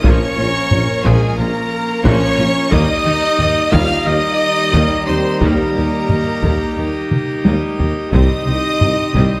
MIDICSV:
0, 0, Header, 1, 12, 480
1, 0, Start_track
1, 0, Tempo, 669643
1, 33, Time_signature, 4, 2, 24, 8
1, 3393, Tempo, 679502
1, 6689, End_track
2, 0, Start_track
2, 0, Title_t, "Violin section"
2, 0, Program_c, 0, 48
2, 52, Note_on_c, 0, 85, 119
2, 752, Note_on_c, 0, 80, 102
2, 763, Note_off_c, 0, 85, 0
2, 989, Note_on_c, 0, 82, 103
2, 992, Note_off_c, 0, 80, 0
2, 1467, Note_on_c, 0, 85, 127
2, 1469, Note_off_c, 0, 82, 0
2, 1940, Note_off_c, 0, 85, 0
2, 1953, Note_on_c, 0, 87, 127
2, 2672, Note_off_c, 0, 87, 0
2, 2677, Note_on_c, 0, 89, 119
2, 2907, Note_on_c, 0, 87, 122
2, 2914, Note_off_c, 0, 89, 0
2, 3627, Note_on_c, 0, 84, 95
2, 3633, Note_off_c, 0, 87, 0
2, 3867, Note_off_c, 0, 84, 0
2, 3874, Note_on_c, 0, 82, 87
2, 5316, Note_off_c, 0, 82, 0
2, 5786, Note_on_c, 0, 87, 106
2, 6689, Note_off_c, 0, 87, 0
2, 6689, End_track
3, 0, Start_track
3, 0, Title_t, "Trumpet"
3, 0, Program_c, 1, 56
3, 31, Note_on_c, 1, 73, 101
3, 755, Note_on_c, 1, 68, 94
3, 765, Note_off_c, 1, 73, 0
3, 985, Note_off_c, 1, 68, 0
3, 989, Note_on_c, 1, 70, 89
3, 1471, Note_on_c, 1, 73, 110
3, 1482, Note_off_c, 1, 70, 0
3, 1945, Note_off_c, 1, 73, 0
3, 1949, Note_on_c, 1, 75, 127
3, 2655, Note_off_c, 1, 75, 0
3, 2669, Note_on_c, 1, 77, 117
3, 2912, Note_on_c, 1, 75, 119
3, 2923, Note_off_c, 1, 77, 0
3, 3631, Note_on_c, 1, 72, 91
3, 3642, Note_off_c, 1, 75, 0
3, 3874, Note_on_c, 1, 70, 76
3, 3885, Note_off_c, 1, 72, 0
3, 5316, Note_off_c, 1, 70, 0
3, 5789, Note_on_c, 1, 75, 106
3, 6689, Note_off_c, 1, 75, 0
3, 6689, End_track
4, 0, Start_track
4, 0, Title_t, "Violin section"
4, 0, Program_c, 2, 48
4, 42, Note_on_c, 2, 73, 94
4, 743, Note_off_c, 2, 73, 0
4, 755, Note_on_c, 2, 68, 89
4, 994, Note_off_c, 2, 68, 0
4, 997, Note_on_c, 2, 70, 96
4, 1464, Note_off_c, 2, 70, 0
4, 1482, Note_on_c, 2, 73, 120
4, 1942, Note_on_c, 2, 75, 113
4, 1957, Note_off_c, 2, 73, 0
4, 2651, Note_off_c, 2, 75, 0
4, 2673, Note_on_c, 2, 77, 112
4, 2901, Note_on_c, 2, 75, 123
4, 2912, Note_off_c, 2, 77, 0
4, 3622, Note_on_c, 2, 72, 88
4, 3629, Note_off_c, 2, 75, 0
4, 3864, Note_off_c, 2, 72, 0
4, 3883, Note_on_c, 2, 70, 71
4, 5321, Note_off_c, 2, 70, 0
4, 5792, Note_on_c, 2, 75, 90
4, 6689, Note_off_c, 2, 75, 0
4, 6689, End_track
5, 0, Start_track
5, 0, Title_t, "Pipe organ"
5, 0, Program_c, 3, 19
5, 0, Note_on_c, 3, 58, 66
5, 0, Note_on_c, 3, 61, 68
5, 0, Note_on_c, 3, 65, 67
5, 0, Note_on_c, 3, 70, 70
5, 1915, Note_off_c, 3, 58, 0
5, 1915, Note_off_c, 3, 65, 0
5, 1917, Note_off_c, 3, 70, 0
5, 1918, Note_off_c, 3, 61, 0
5, 1952, Note_on_c, 3, 58, 97
5, 1952, Note_on_c, 3, 67, 101
5, 1954, Note_on_c, 3, 75, 97
5, 1958, Note_on_c, 3, 63, 105
5, 5767, Note_off_c, 3, 63, 0
5, 5770, Note_off_c, 3, 58, 0
5, 5773, Note_off_c, 3, 75, 0
5, 5775, Note_off_c, 3, 67, 0
5, 5781, Note_on_c, 3, 63, 75
5, 5787, Note_on_c, 3, 75, 71
5, 5789, Note_on_c, 3, 67, 75
5, 5790, Note_on_c, 3, 60, 71
5, 6689, Note_off_c, 3, 60, 0
5, 6689, Note_off_c, 3, 63, 0
5, 6689, Note_off_c, 3, 67, 0
5, 6689, Note_off_c, 3, 75, 0
5, 6689, End_track
6, 0, Start_track
6, 0, Title_t, "French horn section"
6, 0, Program_c, 4, 60
6, 37, Note_on_c, 4, 61, 102
6, 741, Note_off_c, 4, 61, 0
6, 759, Note_on_c, 4, 56, 93
6, 984, Note_on_c, 4, 58, 92
6, 991, Note_off_c, 4, 56, 0
6, 1457, Note_off_c, 4, 58, 0
6, 1460, Note_on_c, 4, 61, 117
6, 1936, Note_off_c, 4, 61, 0
6, 1940, Note_on_c, 4, 63, 127
6, 2665, Note_off_c, 4, 63, 0
6, 2665, Note_on_c, 4, 65, 108
6, 2908, Note_off_c, 4, 65, 0
6, 2915, Note_on_c, 4, 63, 120
6, 3622, Note_off_c, 4, 63, 0
6, 3632, Note_on_c, 4, 60, 89
6, 3858, Note_on_c, 4, 58, 73
6, 3874, Note_off_c, 4, 60, 0
6, 5308, Note_off_c, 4, 58, 0
6, 5801, Note_on_c, 4, 63, 93
6, 6689, Note_off_c, 4, 63, 0
6, 6689, End_track
7, 0, Start_track
7, 0, Title_t, "Viola section"
7, 0, Program_c, 5, 48
7, 16, Note_on_c, 5, 58, 89
7, 17, Note_on_c, 5, 53, 96
7, 248, Note_off_c, 5, 53, 0
7, 248, Note_off_c, 5, 58, 0
7, 262, Note_on_c, 5, 65, 63
7, 264, Note_on_c, 5, 61, 69
7, 320, Note_off_c, 5, 65, 0
7, 321, Note_off_c, 5, 61, 0
7, 506, Note_on_c, 5, 58, 62
7, 507, Note_on_c, 5, 61, 70
7, 563, Note_off_c, 5, 58, 0
7, 564, Note_off_c, 5, 61, 0
7, 744, Note_on_c, 5, 53, 93
7, 746, Note_on_c, 5, 58, 90
7, 971, Note_off_c, 5, 53, 0
7, 972, Note_off_c, 5, 58, 0
7, 993, Note_on_c, 5, 65, 72
7, 996, Note_on_c, 5, 61, 68
7, 1051, Note_off_c, 5, 65, 0
7, 1054, Note_off_c, 5, 61, 0
7, 1464, Note_on_c, 5, 58, 122
7, 1465, Note_on_c, 5, 53, 109
7, 1691, Note_off_c, 5, 53, 0
7, 1691, Note_off_c, 5, 58, 0
7, 1710, Note_on_c, 5, 61, 88
7, 1710, Note_on_c, 5, 65, 82
7, 1767, Note_off_c, 5, 65, 0
7, 1768, Note_off_c, 5, 61, 0
7, 1942, Note_on_c, 5, 58, 116
7, 1943, Note_on_c, 5, 55, 110
7, 2170, Note_off_c, 5, 55, 0
7, 2170, Note_off_c, 5, 58, 0
7, 2189, Note_on_c, 5, 63, 77
7, 2190, Note_on_c, 5, 67, 74
7, 2246, Note_off_c, 5, 63, 0
7, 2247, Note_off_c, 5, 67, 0
7, 2419, Note_on_c, 5, 58, 74
7, 2422, Note_on_c, 5, 63, 75
7, 2477, Note_off_c, 5, 58, 0
7, 2479, Note_off_c, 5, 63, 0
7, 2660, Note_on_c, 5, 55, 110
7, 2661, Note_on_c, 5, 58, 90
7, 2888, Note_off_c, 5, 55, 0
7, 2889, Note_off_c, 5, 58, 0
7, 2906, Note_on_c, 5, 63, 75
7, 2908, Note_on_c, 5, 67, 75
7, 2963, Note_off_c, 5, 63, 0
7, 2965, Note_off_c, 5, 67, 0
7, 3386, Note_on_c, 5, 55, 84
7, 3386, Note_on_c, 5, 58, 94
7, 3613, Note_off_c, 5, 55, 0
7, 3613, Note_off_c, 5, 58, 0
7, 3628, Note_on_c, 5, 63, 63
7, 3628, Note_on_c, 5, 67, 66
7, 3684, Note_off_c, 5, 63, 0
7, 3684, Note_off_c, 5, 67, 0
7, 3869, Note_on_c, 5, 55, 88
7, 3872, Note_on_c, 5, 58, 91
7, 4096, Note_off_c, 5, 55, 0
7, 4097, Note_off_c, 5, 58, 0
7, 4112, Note_on_c, 5, 67, 56
7, 4114, Note_on_c, 5, 63, 59
7, 4169, Note_off_c, 5, 67, 0
7, 4171, Note_off_c, 5, 63, 0
7, 4357, Note_on_c, 5, 63, 50
7, 4358, Note_on_c, 5, 58, 53
7, 4414, Note_off_c, 5, 58, 0
7, 4414, Note_off_c, 5, 63, 0
7, 4596, Note_on_c, 5, 55, 61
7, 4600, Note_on_c, 5, 58, 68
7, 4820, Note_off_c, 5, 55, 0
7, 4822, Note_off_c, 5, 58, 0
7, 4839, Note_on_c, 5, 67, 53
7, 4841, Note_on_c, 5, 63, 51
7, 4895, Note_off_c, 5, 67, 0
7, 4898, Note_off_c, 5, 63, 0
7, 5307, Note_on_c, 5, 58, 78
7, 5309, Note_on_c, 5, 55, 73
7, 5535, Note_off_c, 5, 58, 0
7, 5536, Note_off_c, 5, 55, 0
7, 5550, Note_on_c, 5, 63, 56
7, 5552, Note_on_c, 5, 67, 60
7, 5606, Note_off_c, 5, 63, 0
7, 5608, Note_off_c, 5, 67, 0
7, 5783, Note_on_c, 5, 55, 77
7, 5786, Note_on_c, 5, 60, 81
7, 6014, Note_off_c, 5, 55, 0
7, 6015, Note_off_c, 5, 60, 0
7, 6033, Note_on_c, 5, 67, 59
7, 6035, Note_on_c, 5, 63, 61
7, 6090, Note_off_c, 5, 67, 0
7, 6092, Note_off_c, 5, 63, 0
7, 6272, Note_on_c, 5, 60, 60
7, 6272, Note_on_c, 5, 63, 59
7, 6329, Note_off_c, 5, 60, 0
7, 6329, Note_off_c, 5, 63, 0
7, 6515, Note_on_c, 5, 55, 82
7, 6519, Note_on_c, 5, 60, 73
7, 6689, Note_off_c, 5, 55, 0
7, 6689, Note_off_c, 5, 60, 0
7, 6689, End_track
8, 0, Start_track
8, 0, Title_t, "Trombone section"
8, 0, Program_c, 6, 61
8, 0, Note_on_c, 6, 53, 79
8, 0, Note_on_c, 6, 58, 74
8, 1928, Note_off_c, 6, 53, 0
8, 1929, Note_off_c, 6, 58, 0
8, 1950, Note_on_c, 6, 51, 109
8, 1951, Note_on_c, 6, 55, 118
8, 5540, Note_off_c, 6, 51, 0
8, 5541, Note_off_c, 6, 55, 0
8, 5785, Note_on_c, 6, 51, 84
8, 5793, Note_on_c, 6, 55, 86
8, 6689, Note_off_c, 6, 51, 0
8, 6689, Note_off_c, 6, 55, 0
8, 6689, End_track
9, 0, Start_track
9, 0, Title_t, "Cello section"
9, 0, Program_c, 7, 48
9, 34, Note_on_c, 7, 46, 87
9, 91, Note_off_c, 7, 46, 0
9, 272, Note_on_c, 7, 46, 65
9, 329, Note_off_c, 7, 46, 0
9, 511, Note_on_c, 7, 46, 66
9, 568, Note_off_c, 7, 46, 0
9, 747, Note_on_c, 7, 46, 104
9, 805, Note_off_c, 7, 46, 0
9, 994, Note_on_c, 7, 46, 77
9, 1052, Note_off_c, 7, 46, 0
9, 1465, Note_on_c, 7, 46, 119
9, 1522, Note_off_c, 7, 46, 0
9, 1705, Note_on_c, 7, 46, 79
9, 1763, Note_off_c, 7, 46, 0
9, 1942, Note_on_c, 7, 51, 108
9, 1999, Note_off_c, 7, 51, 0
9, 2188, Note_on_c, 7, 51, 81
9, 2245, Note_off_c, 7, 51, 0
9, 2427, Note_on_c, 7, 51, 77
9, 2484, Note_off_c, 7, 51, 0
9, 2665, Note_on_c, 7, 51, 113
9, 2722, Note_off_c, 7, 51, 0
9, 2904, Note_on_c, 7, 51, 75
9, 2962, Note_off_c, 7, 51, 0
9, 3392, Note_on_c, 7, 51, 94
9, 3448, Note_off_c, 7, 51, 0
9, 3635, Note_on_c, 7, 51, 64
9, 3692, Note_off_c, 7, 51, 0
9, 3873, Note_on_c, 7, 51, 79
9, 3929, Note_off_c, 7, 51, 0
9, 4117, Note_on_c, 7, 51, 59
9, 4174, Note_off_c, 7, 51, 0
9, 4352, Note_on_c, 7, 51, 57
9, 4408, Note_off_c, 7, 51, 0
9, 4586, Note_on_c, 7, 51, 73
9, 4642, Note_off_c, 7, 51, 0
9, 4834, Note_on_c, 7, 51, 53
9, 4891, Note_off_c, 7, 51, 0
9, 5306, Note_on_c, 7, 51, 69
9, 5362, Note_off_c, 7, 51, 0
9, 5545, Note_on_c, 7, 51, 53
9, 5602, Note_off_c, 7, 51, 0
9, 5787, Note_on_c, 7, 48, 78
9, 5843, Note_off_c, 7, 48, 0
9, 6022, Note_on_c, 7, 48, 63
9, 6078, Note_off_c, 7, 48, 0
9, 6261, Note_on_c, 7, 48, 64
9, 6318, Note_off_c, 7, 48, 0
9, 6503, Note_on_c, 7, 48, 85
9, 6560, Note_off_c, 7, 48, 0
9, 6689, End_track
10, 0, Start_track
10, 0, Title_t, "Double bass section"
10, 0, Program_c, 8, 48
10, 33, Note_on_c, 8, 34, 85
10, 91, Note_off_c, 8, 34, 0
10, 274, Note_on_c, 8, 34, 65
10, 332, Note_off_c, 8, 34, 0
10, 514, Note_on_c, 8, 34, 71
10, 571, Note_off_c, 8, 34, 0
10, 755, Note_on_c, 8, 34, 105
10, 812, Note_off_c, 8, 34, 0
10, 993, Note_on_c, 8, 34, 67
10, 1050, Note_off_c, 8, 34, 0
10, 1471, Note_on_c, 8, 34, 119
10, 1528, Note_off_c, 8, 34, 0
10, 1715, Note_on_c, 8, 34, 75
10, 1772, Note_off_c, 8, 34, 0
10, 1957, Note_on_c, 8, 39, 108
10, 2014, Note_off_c, 8, 39, 0
10, 2197, Note_on_c, 8, 39, 80
10, 2254, Note_off_c, 8, 39, 0
10, 2436, Note_on_c, 8, 39, 77
10, 2494, Note_off_c, 8, 39, 0
10, 2674, Note_on_c, 8, 39, 114
10, 2731, Note_off_c, 8, 39, 0
10, 2918, Note_on_c, 8, 39, 64
10, 2975, Note_off_c, 8, 39, 0
10, 3396, Note_on_c, 8, 39, 93
10, 3452, Note_off_c, 8, 39, 0
10, 3639, Note_on_c, 8, 39, 62
10, 3696, Note_off_c, 8, 39, 0
10, 3875, Note_on_c, 8, 39, 76
10, 3932, Note_off_c, 8, 39, 0
10, 4117, Note_on_c, 8, 39, 54
10, 4174, Note_off_c, 8, 39, 0
10, 4350, Note_on_c, 8, 39, 53
10, 4406, Note_off_c, 8, 39, 0
10, 4588, Note_on_c, 8, 39, 84
10, 4645, Note_off_c, 8, 39, 0
10, 4830, Note_on_c, 8, 39, 47
10, 4887, Note_off_c, 8, 39, 0
10, 5312, Note_on_c, 8, 39, 75
10, 5369, Note_off_c, 8, 39, 0
10, 5551, Note_on_c, 8, 39, 49
10, 5607, Note_off_c, 8, 39, 0
10, 5788, Note_on_c, 8, 36, 82
10, 5845, Note_off_c, 8, 36, 0
10, 6030, Note_on_c, 8, 36, 56
10, 6087, Note_off_c, 8, 36, 0
10, 6269, Note_on_c, 8, 36, 60
10, 6326, Note_off_c, 8, 36, 0
10, 6512, Note_on_c, 8, 36, 97
10, 6569, Note_off_c, 8, 36, 0
10, 6689, End_track
11, 0, Start_track
11, 0, Title_t, "Tuba"
11, 0, Program_c, 10, 58
11, 34, Note_on_c, 10, 34, 90
11, 130, Note_off_c, 10, 34, 0
11, 280, Note_on_c, 10, 34, 62
11, 375, Note_off_c, 10, 34, 0
11, 510, Note_on_c, 10, 34, 75
11, 607, Note_off_c, 10, 34, 0
11, 745, Note_on_c, 10, 34, 99
11, 842, Note_off_c, 10, 34, 0
11, 991, Note_on_c, 10, 34, 79
11, 1087, Note_off_c, 10, 34, 0
11, 1463, Note_on_c, 10, 34, 114
11, 1560, Note_off_c, 10, 34, 0
11, 1709, Note_on_c, 10, 34, 78
11, 1806, Note_off_c, 10, 34, 0
11, 1951, Note_on_c, 10, 39, 119
11, 2047, Note_off_c, 10, 39, 0
11, 2197, Note_on_c, 10, 39, 78
11, 2292, Note_off_c, 10, 39, 0
11, 2426, Note_on_c, 10, 39, 80
11, 2523, Note_off_c, 10, 39, 0
11, 2667, Note_on_c, 10, 39, 107
11, 2764, Note_off_c, 10, 39, 0
11, 2910, Note_on_c, 10, 39, 80
11, 3007, Note_off_c, 10, 39, 0
11, 3392, Note_on_c, 10, 39, 92
11, 3489, Note_off_c, 10, 39, 0
11, 3632, Note_on_c, 10, 39, 62
11, 3729, Note_off_c, 10, 39, 0
11, 3874, Note_on_c, 10, 39, 80
11, 3970, Note_off_c, 10, 39, 0
11, 4114, Note_on_c, 10, 39, 55
11, 4211, Note_off_c, 10, 39, 0
11, 4362, Note_on_c, 10, 39, 57
11, 4457, Note_off_c, 10, 39, 0
11, 4603, Note_on_c, 10, 39, 74
11, 4698, Note_off_c, 10, 39, 0
11, 4844, Note_on_c, 10, 39, 56
11, 4938, Note_off_c, 10, 39, 0
11, 5319, Note_on_c, 10, 39, 68
11, 5415, Note_off_c, 10, 39, 0
11, 5558, Note_on_c, 10, 39, 51
11, 5654, Note_off_c, 10, 39, 0
11, 5794, Note_on_c, 10, 36, 84
11, 5891, Note_off_c, 10, 36, 0
11, 6035, Note_on_c, 10, 36, 56
11, 6131, Note_off_c, 10, 36, 0
11, 6273, Note_on_c, 10, 36, 62
11, 6369, Note_off_c, 10, 36, 0
11, 6513, Note_on_c, 10, 36, 83
11, 6609, Note_off_c, 10, 36, 0
11, 6689, End_track
12, 0, Start_track
12, 0, Title_t, "Taiko and cinematic ensemble drums"
12, 31, Note_on_c, 9, 41, 94
12, 103, Note_off_c, 9, 41, 0
12, 509, Note_on_c, 9, 45, 64
12, 581, Note_off_c, 9, 45, 0
12, 752, Note_on_c, 9, 41, 83
12, 824, Note_off_c, 9, 41, 0
12, 1473, Note_on_c, 9, 41, 86
12, 1545, Note_off_c, 9, 41, 0
12, 1952, Note_on_c, 9, 41, 110
12, 2023, Note_off_c, 9, 41, 0
12, 2429, Note_on_c, 9, 45, 68
12, 2500, Note_off_c, 9, 45, 0
12, 2673, Note_on_c, 9, 41, 84
12, 2745, Note_off_c, 9, 41, 0
12, 3396, Note_on_c, 9, 41, 86
12, 3467, Note_off_c, 9, 41, 0
12, 3871, Note_on_c, 9, 41, 105
12, 3942, Note_off_c, 9, 41, 0
12, 4353, Note_on_c, 9, 45, 62
12, 4424, Note_off_c, 9, 45, 0
12, 4591, Note_on_c, 9, 41, 81
12, 4661, Note_off_c, 9, 41, 0
12, 5074, Note_on_c, 9, 47, 84
12, 5145, Note_off_c, 9, 47, 0
12, 5312, Note_on_c, 9, 48, 92
12, 5383, Note_off_c, 9, 48, 0
12, 5553, Note_on_c, 9, 43, 86
12, 5623, Note_off_c, 9, 43, 0
12, 5793, Note_on_c, 9, 41, 98
12, 5864, Note_off_c, 9, 41, 0
12, 6273, Note_on_c, 9, 45, 67
12, 6343, Note_off_c, 9, 45, 0
12, 6511, Note_on_c, 9, 41, 82
12, 6581, Note_off_c, 9, 41, 0
12, 6689, End_track
0, 0, End_of_file